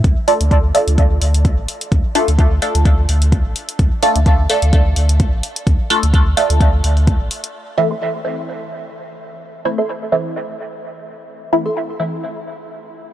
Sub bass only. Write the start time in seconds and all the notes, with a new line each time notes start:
0.04 D2
0.41 D2
0.87 D2
1.21 D2
1.58 A1
1.92 D2
2.28 D2
2.75 D2
3.09 D2
3.45 A1
3.79 D2
4.16 D2
4.62 D2
4.96 D2
5.33 A1
5.67 D2
6.03 D2
6.50 D2
6.84 D2
7.20 A1